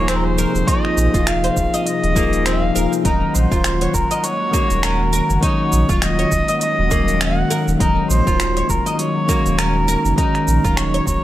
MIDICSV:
0, 0, Header, 1, 7, 480
1, 0, Start_track
1, 0, Tempo, 594059
1, 545, Time_signature, 4, 2, 24, 8
1, 9081, End_track
2, 0, Start_track
2, 0, Title_t, "Kamancheh"
2, 0, Program_c, 0, 110
2, 0, Note_on_c, 0, 73, 107
2, 69, Note_on_c, 0, 72, 93
2, 81, Note_off_c, 0, 73, 0
2, 131, Note_on_c, 0, 70, 84
2, 143, Note_off_c, 0, 72, 0
2, 197, Note_on_c, 0, 72, 104
2, 209, Note_off_c, 0, 70, 0
2, 545, Note_on_c, 0, 75, 107
2, 557, Note_off_c, 0, 72, 0
2, 1028, Note_on_c, 0, 77, 101
2, 1040, Note_off_c, 0, 75, 0
2, 1505, Note_on_c, 0, 75, 110
2, 1517, Note_off_c, 0, 77, 0
2, 1985, Note_on_c, 0, 77, 109
2, 1998, Note_off_c, 0, 75, 0
2, 2362, Note_off_c, 0, 77, 0
2, 2460, Note_on_c, 0, 70, 91
2, 2699, Note_on_c, 0, 72, 94
2, 2711, Note_off_c, 0, 70, 0
2, 3184, Note_on_c, 0, 70, 89
2, 3196, Note_off_c, 0, 72, 0
2, 3422, Note_on_c, 0, 73, 106
2, 3434, Note_off_c, 0, 70, 0
2, 3902, Note_on_c, 0, 70, 94
2, 3914, Note_off_c, 0, 73, 0
2, 4376, Note_off_c, 0, 70, 0
2, 4381, Note_on_c, 0, 73, 95
2, 4831, Note_off_c, 0, 73, 0
2, 4865, Note_on_c, 0, 75, 98
2, 5313, Note_off_c, 0, 75, 0
2, 5343, Note_on_c, 0, 75, 100
2, 5827, Note_on_c, 0, 78, 108
2, 5840, Note_off_c, 0, 75, 0
2, 6203, Note_off_c, 0, 78, 0
2, 6304, Note_on_c, 0, 70, 97
2, 6528, Note_off_c, 0, 70, 0
2, 6543, Note_on_c, 0, 72, 104
2, 7028, Note_on_c, 0, 70, 88
2, 7041, Note_off_c, 0, 72, 0
2, 7262, Note_off_c, 0, 70, 0
2, 7267, Note_on_c, 0, 73, 99
2, 7742, Note_on_c, 0, 70, 95
2, 7754, Note_off_c, 0, 73, 0
2, 8216, Note_off_c, 0, 70, 0
2, 8221, Note_on_c, 0, 70, 91
2, 8699, Note_on_c, 0, 73, 91
2, 8711, Note_off_c, 0, 70, 0
2, 8937, Note_off_c, 0, 73, 0
2, 8942, Note_on_c, 0, 73, 96
2, 9081, Note_off_c, 0, 73, 0
2, 9081, End_track
3, 0, Start_track
3, 0, Title_t, "Oud"
3, 0, Program_c, 1, 24
3, 68, Note_on_c, 1, 60, 84
3, 196, Note_off_c, 1, 60, 0
3, 309, Note_on_c, 1, 70, 102
3, 437, Note_off_c, 1, 70, 0
3, 550, Note_on_c, 1, 63, 75
3, 911, Note_off_c, 1, 63, 0
3, 925, Note_on_c, 1, 65, 73
3, 1021, Note_off_c, 1, 65, 0
3, 1164, Note_on_c, 1, 72, 77
3, 1261, Note_off_c, 1, 72, 0
3, 1404, Note_on_c, 1, 75, 78
3, 1736, Note_off_c, 1, 75, 0
3, 1747, Note_on_c, 1, 58, 106
3, 1976, Note_off_c, 1, 58, 0
3, 1987, Note_on_c, 1, 60, 82
3, 2116, Note_off_c, 1, 60, 0
3, 2227, Note_on_c, 1, 70, 101
3, 2356, Note_off_c, 1, 70, 0
3, 2466, Note_on_c, 1, 63, 75
3, 2829, Note_off_c, 1, 63, 0
3, 2841, Note_on_c, 1, 65, 75
3, 2940, Note_off_c, 1, 65, 0
3, 3083, Note_on_c, 1, 73, 75
3, 3180, Note_off_c, 1, 73, 0
3, 3321, Note_on_c, 1, 75, 79
3, 3654, Note_off_c, 1, 75, 0
3, 3664, Note_on_c, 1, 58, 98
3, 3894, Note_off_c, 1, 58, 0
3, 3904, Note_on_c, 1, 61, 83
3, 4035, Note_off_c, 1, 61, 0
3, 4143, Note_on_c, 1, 70, 99
3, 4274, Note_off_c, 1, 70, 0
3, 4384, Note_on_c, 1, 63, 83
3, 4748, Note_off_c, 1, 63, 0
3, 4760, Note_on_c, 1, 65, 83
3, 4859, Note_off_c, 1, 65, 0
3, 5000, Note_on_c, 1, 73, 77
3, 5099, Note_off_c, 1, 73, 0
3, 5240, Note_on_c, 1, 75, 77
3, 5574, Note_off_c, 1, 75, 0
3, 5584, Note_on_c, 1, 58, 101
3, 5814, Note_off_c, 1, 58, 0
3, 5824, Note_on_c, 1, 61, 78
3, 5955, Note_off_c, 1, 61, 0
3, 6064, Note_on_c, 1, 70, 108
3, 6195, Note_off_c, 1, 70, 0
3, 6306, Note_on_c, 1, 63, 76
3, 6669, Note_off_c, 1, 63, 0
3, 6682, Note_on_c, 1, 65, 78
3, 6780, Note_off_c, 1, 65, 0
3, 6921, Note_on_c, 1, 73, 78
3, 7020, Note_off_c, 1, 73, 0
3, 7161, Note_on_c, 1, 75, 74
3, 7494, Note_off_c, 1, 75, 0
3, 7504, Note_on_c, 1, 58, 105
3, 7734, Note_off_c, 1, 58, 0
3, 7744, Note_on_c, 1, 61, 83
3, 7874, Note_off_c, 1, 61, 0
3, 7984, Note_on_c, 1, 70, 103
3, 8115, Note_off_c, 1, 70, 0
3, 8224, Note_on_c, 1, 63, 78
3, 8588, Note_off_c, 1, 63, 0
3, 8601, Note_on_c, 1, 65, 79
3, 8699, Note_off_c, 1, 65, 0
3, 8840, Note_on_c, 1, 73, 76
3, 8939, Note_off_c, 1, 73, 0
3, 9081, End_track
4, 0, Start_track
4, 0, Title_t, "Analog synth pad"
4, 0, Program_c, 2, 89
4, 0, Note_on_c, 2, 48, 73
4, 0, Note_on_c, 2, 53, 81
4, 0, Note_on_c, 2, 65, 72
4, 0, Note_on_c, 2, 68, 93
4, 2434, Note_off_c, 2, 65, 0
4, 2435, Note_off_c, 2, 48, 0
4, 2435, Note_off_c, 2, 53, 0
4, 2435, Note_off_c, 2, 68, 0
4, 2461, Note_on_c, 2, 58, 74
4, 2461, Note_on_c, 2, 78, 72
4, 2463, Note_on_c, 2, 51, 83
4, 2464, Note_on_c, 2, 54, 89
4, 6271, Note_off_c, 2, 78, 0
4, 6301, Note_on_c, 2, 63, 75
4, 9081, Note_off_c, 2, 51, 0
4, 9081, Note_off_c, 2, 54, 0
4, 9081, Note_off_c, 2, 58, 0
4, 9081, Note_off_c, 2, 63, 0
4, 9081, End_track
5, 0, Start_track
5, 0, Title_t, "Tine electric piano"
5, 0, Program_c, 3, 4
5, 0, Control_c, 3, 64, 127
5, 0, Note_on_c, 3, 53, 95
5, 0, Note_on_c, 3, 58, 83
5, 0, Note_on_c, 3, 63, 84
5, 0, Note_on_c, 3, 68, 101
5, 512, Note_off_c, 3, 53, 0
5, 518, Note_off_c, 3, 58, 0
5, 523, Note_off_c, 3, 63, 0
5, 527, Note_on_c, 3, 53, 94
5, 529, Note_off_c, 3, 68, 0
5, 540, Note_on_c, 3, 58, 87
5, 549, Note_on_c, 3, 63, 81
5, 561, Note_on_c, 3, 68, 100
5, 1711, Note_off_c, 3, 53, 0
5, 1718, Note_off_c, 3, 58, 0
5, 1722, Note_off_c, 3, 63, 0
5, 1728, Note_off_c, 3, 68, 0
5, 1738, Note_on_c, 3, 53, 92
5, 1742, Note_on_c, 3, 58, 86
5, 1748, Note_on_c, 3, 63, 79
5, 1753, Note_on_c, 3, 68, 99
5, 2197, Note_off_c, 3, 53, 0
5, 2199, Note_off_c, 3, 58, 0
5, 2202, Note_off_c, 3, 63, 0
5, 2204, Note_off_c, 3, 68, 0
5, 2218, Note_on_c, 3, 53, 86
5, 2223, Note_on_c, 3, 58, 76
5, 2228, Note_on_c, 3, 63, 78
5, 2233, Note_on_c, 3, 68, 92
5, 2437, Note_off_c, 3, 53, 0
5, 2439, Note_off_c, 3, 58, 0
5, 2442, Note_off_c, 3, 63, 0
5, 2444, Note_off_c, 3, 68, 0
5, 2451, Note_on_c, 3, 51, 80
5, 2461, Note_on_c, 3, 56, 73
5, 2474, Control_c, 3, 64, 0
5, 2483, Note_on_c, 3, 54, 88
5, 2618, Control_c, 3, 64, 127
5, 3633, Note_off_c, 3, 51, 0
5, 3638, Note_off_c, 3, 56, 0
5, 3646, Note_on_c, 3, 51, 98
5, 3649, Note_off_c, 3, 54, 0
5, 3656, Note_on_c, 3, 56, 85
5, 3668, Note_on_c, 3, 61, 80
5, 3677, Note_on_c, 3, 66, 99
5, 4351, Note_off_c, 3, 51, 0
5, 4356, Note_off_c, 3, 56, 0
5, 4362, Note_off_c, 3, 61, 0
5, 4366, Note_off_c, 3, 66, 0
5, 4366, Note_on_c, 3, 51, 89
5, 4378, Note_on_c, 3, 56, 88
5, 4388, Note_on_c, 3, 61, 86
5, 4398, Note_on_c, 3, 54, 104
5, 5551, Note_off_c, 3, 51, 0
5, 5557, Note_off_c, 3, 56, 0
5, 5562, Note_off_c, 3, 61, 0
5, 5567, Note_off_c, 3, 54, 0
5, 5568, Note_on_c, 3, 51, 85
5, 5580, Note_on_c, 3, 56, 82
5, 5591, Note_on_c, 3, 61, 81
5, 5601, Note_on_c, 3, 66, 94
5, 6272, Note_off_c, 3, 51, 0
5, 6278, Note_off_c, 3, 56, 0
5, 6283, Note_off_c, 3, 61, 0
5, 6288, Note_off_c, 3, 66, 0
5, 6288, Note_on_c, 3, 51, 83
5, 6298, Note_on_c, 3, 56, 80
5, 6309, Note_on_c, 3, 61, 75
5, 6318, Note_on_c, 3, 54, 90
5, 7472, Note_off_c, 3, 51, 0
5, 7477, Note_off_c, 3, 56, 0
5, 7482, Note_off_c, 3, 61, 0
5, 7487, Note_off_c, 3, 54, 0
5, 7488, Note_on_c, 3, 51, 91
5, 7498, Note_on_c, 3, 56, 84
5, 7509, Note_on_c, 3, 61, 82
5, 7521, Note_on_c, 3, 66, 104
5, 8192, Note_off_c, 3, 51, 0
5, 8197, Note_off_c, 3, 56, 0
5, 8202, Note_off_c, 3, 61, 0
5, 8208, Note_off_c, 3, 66, 0
5, 8208, Note_on_c, 3, 51, 97
5, 8221, Note_on_c, 3, 56, 88
5, 8230, Note_on_c, 3, 61, 87
5, 8241, Note_on_c, 3, 54, 96
5, 9081, Note_off_c, 3, 51, 0
5, 9081, Note_off_c, 3, 54, 0
5, 9081, Note_off_c, 3, 56, 0
5, 9081, Note_off_c, 3, 61, 0
5, 9081, End_track
6, 0, Start_track
6, 0, Title_t, "Sub bass"
6, 0, Program_c, 4, 38
6, 0, Note_on_c, 4, 27, 99
6, 372, Note_off_c, 4, 27, 0
6, 442, Note_on_c, 4, 27, 83
6, 512, Note_off_c, 4, 27, 0
6, 784, Note_on_c, 4, 34, 76
6, 877, Note_off_c, 4, 34, 0
6, 922, Note_on_c, 4, 27, 80
6, 1212, Note_off_c, 4, 27, 0
6, 1265, Note_on_c, 4, 27, 97
6, 1358, Note_off_c, 4, 27, 0
6, 1644, Note_on_c, 4, 27, 103
6, 2119, Note_off_c, 4, 27, 0
6, 2123, Note_on_c, 4, 27, 85
6, 2193, Note_off_c, 4, 27, 0
6, 2229, Note_on_c, 4, 27, 80
6, 2320, Note_off_c, 4, 27, 0
6, 2464, Note_on_c, 4, 27, 104
6, 2638, Note_off_c, 4, 27, 0
6, 2707, Note_on_c, 4, 34, 81
6, 2799, Note_off_c, 4, 34, 0
6, 2840, Note_on_c, 4, 27, 79
6, 3131, Note_off_c, 4, 27, 0
6, 3184, Note_on_c, 4, 27, 106
6, 3277, Note_off_c, 4, 27, 0
6, 3801, Note_on_c, 4, 27, 94
6, 4211, Note_off_c, 4, 27, 0
6, 4282, Note_on_c, 4, 30, 83
6, 4352, Note_off_c, 4, 30, 0
6, 4626, Note_on_c, 4, 34, 80
6, 4718, Note_off_c, 4, 34, 0
6, 4762, Note_on_c, 4, 27, 87
6, 5052, Note_off_c, 4, 27, 0
6, 5104, Note_on_c, 4, 27, 103
6, 5198, Note_off_c, 4, 27, 0
6, 5483, Note_on_c, 4, 27, 103
6, 6013, Note_off_c, 4, 27, 0
6, 6202, Note_on_c, 4, 27, 102
6, 6272, Note_off_c, 4, 27, 0
6, 6305, Note_on_c, 4, 27, 103
6, 6478, Note_off_c, 4, 27, 0
6, 6544, Note_on_c, 4, 34, 84
6, 6637, Note_off_c, 4, 34, 0
6, 6682, Note_on_c, 4, 27, 85
6, 6972, Note_off_c, 4, 27, 0
6, 7024, Note_on_c, 4, 27, 105
6, 7117, Note_off_c, 4, 27, 0
6, 7640, Note_on_c, 4, 27, 97
6, 8050, Note_off_c, 4, 27, 0
6, 8119, Note_on_c, 4, 30, 79
6, 8190, Note_off_c, 4, 30, 0
6, 8464, Note_on_c, 4, 34, 82
6, 8557, Note_off_c, 4, 34, 0
6, 8601, Note_on_c, 4, 27, 84
6, 8891, Note_off_c, 4, 27, 0
6, 8944, Note_on_c, 4, 27, 104
6, 9037, Note_off_c, 4, 27, 0
6, 9081, End_track
7, 0, Start_track
7, 0, Title_t, "Drums"
7, 66, Note_on_c, 9, 26, 99
7, 66, Note_on_c, 9, 46, 70
7, 68, Note_on_c, 9, 69, 31
7, 147, Note_off_c, 9, 26, 0
7, 147, Note_off_c, 9, 46, 0
7, 149, Note_off_c, 9, 69, 0
7, 309, Note_on_c, 9, 69, 73
7, 390, Note_off_c, 9, 69, 0
7, 447, Note_on_c, 9, 69, 38
7, 528, Note_off_c, 9, 69, 0
7, 545, Note_on_c, 9, 36, 117
7, 547, Note_on_c, 9, 46, 74
7, 550, Note_on_c, 9, 69, 34
7, 626, Note_off_c, 9, 36, 0
7, 628, Note_off_c, 9, 46, 0
7, 631, Note_off_c, 9, 69, 0
7, 685, Note_on_c, 9, 26, 31
7, 766, Note_off_c, 9, 26, 0
7, 789, Note_on_c, 9, 69, 77
7, 869, Note_off_c, 9, 69, 0
7, 922, Note_on_c, 9, 36, 99
7, 923, Note_on_c, 9, 46, 34
7, 925, Note_on_c, 9, 69, 46
7, 1003, Note_off_c, 9, 36, 0
7, 1003, Note_off_c, 9, 46, 0
7, 1006, Note_off_c, 9, 69, 0
7, 1025, Note_on_c, 9, 26, 104
7, 1025, Note_on_c, 9, 46, 74
7, 1028, Note_on_c, 9, 69, 34
7, 1106, Note_off_c, 9, 26, 0
7, 1106, Note_off_c, 9, 46, 0
7, 1108, Note_off_c, 9, 69, 0
7, 1162, Note_on_c, 9, 46, 49
7, 1242, Note_off_c, 9, 46, 0
7, 1265, Note_on_c, 9, 36, 60
7, 1267, Note_on_c, 9, 69, 77
7, 1346, Note_off_c, 9, 36, 0
7, 1348, Note_off_c, 9, 69, 0
7, 1403, Note_on_c, 9, 46, 46
7, 1406, Note_on_c, 9, 69, 46
7, 1484, Note_off_c, 9, 46, 0
7, 1487, Note_off_c, 9, 69, 0
7, 1507, Note_on_c, 9, 46, 70
7, 1510, Note_on_c, 9, 69, 34
7, 1588, Note_off_c, 9, 46, 0
7, 1590, Note_off_c, 9, 69, 0
7, 1644, Note_on_c, 9, 46, 32
7, 1725, Note_off_c, 9, 46, 0
7, 1744, Note_on_c, 9, 36, 105
7, 1747, Note_on_c, 9, 69, 74
7, 1825, Note_off_c, 9, 36, 0
7, 1828, Note_off_c, 9, 69, 0
7, 1882, Note_on_c, 9, 46, 32
7, 1884, Note_on_c, 9, 69, 41
7, 1963, Note_off_c, 9, 46, 0
7, 1965, Note_off_c, 9, 69, 0
7, 1986, Note_on_c, 9, 26, 101
7, 1986, Note_on_c, 9, 46, 70
7, 1988, Note_on_c, 9, 69, 32
7, 2067, Note_off_c, 9, 26, 0
7, 2067, Note_off_c, 9, 46, 0
7, 2069, Note_off_c, 9, 69, 0
7, 2229, Note_on_c, 9, 69, 73
7, 2309, Note_off_c, 9, 69, 0
7, 2366, Note_on_c, 9, 69, 41
7, 2447, Note_off_c, 9, 69, 0
7, 2464, Note_on_c, 9, 36, 118
7, 2464, Note_on_c, 9, 46, 70
7, 2467, Note_on_c, 9, 69, 33
7, 2545, Note_off_c, 9, 36, 0
7, 2545, Note_off_c, 9, 46, 0
7, 2548, Note_off_c, 9, 69, 0
7, 2707, Note_on_c, 9, 69, 81
7, 2788, Note_off_c, 9, 69, 0
7, 2841, Note_on_c, 9, 36, 107
7, 2845, Note_on_c, 9, 69, 46
7, 2921, Note_off_c, 9, 36, 0
7, 2925, Note_off_c, 9, 69, 0
7, 2943, Note_on_c, 9, 26, 104
7, 2943, Note_on_c, 9, 46, 68
7, 2946, Note_on_c, 9, 69, 36
7, 3024, Note_off_c, 9, 26, 0
7, 3024, Note_off_c, 9, 46, 0
7, 3027, Note_off_c, 9, 69, 0
7, 3080, Note_on_c, 9, 46, 49
7, 3161, Note_off_c, 9, 46, 0
7, 3184, Note_on_c, 9, 36, 59
7, 3186, Note_on_c, 9, 69, 77
7, 3264, Note_off_c, 9, 36, 0
7, 3267, Note_off_c, 9, 69, 0
7, 3320, Note_on_c, 9, 46, 50
7, 3322, Note_on_c, 9, 69, 44
7, 3400, Note_off_c, 9, 46, 0
7, 3403, Note_off_c, 9, 69, 0
7, 3423, Note_on_c, 9, 46, 72
7, 3426, Note_on_c, 9, 69, 36
7, 3504, Note_off_c, 9, 46, 0
7, 3507, Note_off_c, 9, 69, 0
7, 3664, Note_on_c, 9, 36, 100
7, 3666, Note_on_c, 9, 69, 74
7, 3744, Note_off_c, 9, 36, 0
7, 3747, Note_off_c, 9, 69, 0
7, 3799, Note_on_c, 9, 46, 31
7, 3802, Note_on_c, 9, 69, 45
7, 3880, Note_off_c, 9, 46, 0
7, 3883, Note_off_c, 9, 69, 0
7, 3903, Note_on_c, 9, 26, 105
7, 3903, Note_on_c, 9, 46, 70
7, 3906, Note_on_c, 9, 69, 34
7, 3984, Note_off_c, 9, 26, 0
7, 3984, Note_off_c, 9, 46, 0
7, 3987, Note_off_c, 9, 69, 0
7, 4145, Note_on_c, 9, 69, 77
7, 4226, Note_off_c, 9, 69, 0
7, 4282, Note_on_c, 9, 69, 42
7, 4363, Note_off_c, 9, 69, 0
7, 4384, Note_on_c, 9, 36, 119
7, 4384, Note_on_c, 9, 46, 70
7, 4387, Note_on_c, 9, 69, 34
7, 4465, Note_off_c, 9, 36, 0
7, 4465, Note_off_c, 9, 46, 0
7, 4467, Note_off_c, 9, 69, 0
7, 4625, Note_on_c, 9, 69, 86
7, 4706, Note_off_c, 9, 69, 0
7, 4761, Note_on_c, 9, 36, 111
7, 4761, Note_on_c, 9, 69, 51
7, 4842, Note_off_c, 9, 36, 0
7, 4842, Note_off_c, 9, 69, 0
7, 4863, Note_on_c, 9, 26, 110
7, 4863, Note_on_c, 9, 46, 70
7, 4866, Note_on_c, 9, 69, 34
7, 4944, Note_off_c, 9, 26, 0
7, 4944, Note_off_c, 9, 46, 0
7, 4947, Note_off_c, 9, 69, 0
7, 5000, Note_on_c, 9, 46, 42
7, 5081, Note_off_c, 9, 46, 0
7, 5104, Note_on_c, 9, 36, 62
7, 5105, Note_on_c, 9, 69, 82
7, 5185, Note_off_c, 9, 36, 0
7, 5185, Note_off_c, 9, 69, 0
7, 5239, Note_on_c, 9, 46, 46
7, 5241, Note_on_c, 9, 69, 45
7, 5319, Note_off_c, 9, 46, 0
7, 5322, Note_off_c, 9, 69, 0
7, 5342, Note_on_c, 9, 46, 71
7, 5345, Note_on_c, 9, 69, 35
7, 5423, Note_off_c, 9, 46, 0
7, 5425, Note_off_c, 9, 69, 0
7, 5585, Note_on_c, 9, 36, 109
7, 5585, Note_on_c, 9, 69, 79
7, 5665, Note_off_c, 9, 36, 0
7, 5665, Note_off_c, 9, 69, 0
7, 5720, Note_on_c, 9, 46, 30
7, 5723, Note_on_c, 9, 69, 43
7, 5801, Note_off_c, 9, 46, 0
7, 5804, Note_off_c, 9, 69, 0
7, 5824, Note_on_c, 9, 26, 107
7, 5824, Note_on_c, 9, 46, 68
7, 5827, Note_on_c, 9, 69, 35
7, 5905, Note_off_c, 9, 26, 0
7, 5905, Note_off_c, 9, 46, 0
7, 5907, Note_off_c, 9, 69, 0
7, 6067, Note_on_c, 9, 69, 76
7, 6148, Note_off_c, 9, 69, 0
7, 6205, Note_on_c, 9, 69, 44
7, 6286, Note_off_c, 9, 69, 0
7, 6305, Note_on_c, 9, 36, 127
7, 6307, Note_on_c, 9, 46, 68
7, 6309, Note_on_c, 9, 69, 35
7, 6385, Note_off_c, 9, 36, 0
7, 6387, Note_off_c, 9, 46, 0
7, 6390, Note_off_c, 9, 69, 0
7, 6547, Note_on_c, 9, 69, 82
7, 6628, Note_off_c, 9, 69, 0
7, 6681, Note_on_c, 9, 36, 109
7, 6686, Note_on_c, 9, 69, 53
7, 6762, Note_off_c, 9, 36, 0
7, 6767, Note_off_c, 9, 69, 0
7, 6785, Note_on_c, 9, 26, 110
7, 6785, Note_on_c, 9, 46, 65
7, 6788, Note_on_c, 9, 69, 35
7, 6866, Note_off_c, 9, 26, 0
7, 6866, Note_off_c, 9, 46, 0
7, 6868, Note_off_c, 9, 69, 0
7, 6923, Note_on_c, 9, 46, 44
7, 7003, Note_off_c, 9, 46, 0
7, 7024, Note_on_c, 9, 36, 61
7, 7026, Note_on_c, 9, 69, 83
7, 7105, Note_off_c, 9, 36, 0
7, 7107, Note_off_c, 9, 69, 0
7, 7162, Note_on_c, 9, 46, 44
7, 7165, Note_on_c, 9, 69, 49
7, 7243, Note_off_c, 9, 46, 0
7, 7246, Note_off_c, 9, 69, 0
7, 7264, Note_on_c, 9, 46, 64
7, 7267, Note_on_c, 9, 69, 35
7, 7345, Note_off_c, 9, 46, 0
7, 7347, Note_off_c, 9, 69, 0
7, 7504, Note_on_c, 9, 36, 113
7, 7506, Note_on_c, 9, 69, 81
7, 7585, Note_off_c, 9, 36, 0
7, 7587, Note_off_c, 9, 69, 0
7, 7641, Note_on_c, 9, 46, 28
7, 7644, Note_on_c, 9, 69, 45
7, 7722, Note_off_c, 9, 46, 0
7, 7725, Note_off_c, 9, 69, 0
7, 7745, Note_on_c, 9, 26, 103
7, 7745, Note_on_c, 9, 46, 62
7, 7748, Note_on_c, 9, 69, 35
7, 7826, Note_off_c, 9, 26, 0
7, 7826, Note_off_c, 9, 46, 0
7, 7829, Note_off_c, 9, 69, 0
7, 7985, Note_on_c, 9, 69, 82
7, 8066, Note_off_c, 9, 69, 0
7, 8123, Note_on_c, 9, 69, 46
7, 8204, Note_off_c, 9, 69, 0
7, 8224, Note_on_c, 9, 36, 124
7, 8226, Note_on_c, 9, 46, 64
7, 8228, Note_on_c, 9, 69, 35
7, 8305, Note_off_c, 9, 36, 0
7, 8307, Note_off_c, 9, 46, 0
7, 8309, Note_off_c, 9, 69, 0
7, 8362, Note_on_c, 9, 26, 30
7, 8362, Note_on_c, 9, 46, 29
7, 8443, Note_off_c, 9, 26, 0
7, 8443, Note_off_c, 9, 46, 0
7, 8466, Note_on_c, 9, 69, 77
7, 8547, Note_off_c, 9, 69, 0
7, 8601, Note_on_c, 9, 36, 112
7, 8603, Note_on_c, 9, 69, 49
7, 8682, Note_off_c, 9, 36, 0
7, 8684, Note_off_c, 9, 69, 0
7, 8704, Note_on_c, 9, 26, 99
7, 8704, Note_on_c, 9, 46, 67
7, 8706, Note_on_c, 9, 69, 38
7, 8785, Note_off_c, 9, 26, 0
7, 8785, Note_off_c, 9, 46, 0
7, 8787, Note_off_c, 9, 69, 0
7, 8841, Note_on_c, 9, 46, 43
7, 8922, Note_off_c, 9, 46, 0
7, 8943, Note_on_c, 9, 36, 61
7, 8948, Note_on_c, 9, 69, 79
7, 9024, Note_off_c, 9, 36, 0
7, 9029, Note_off_c, 9, 69, 0
7, 9081, End_track
0, 0, End_of_file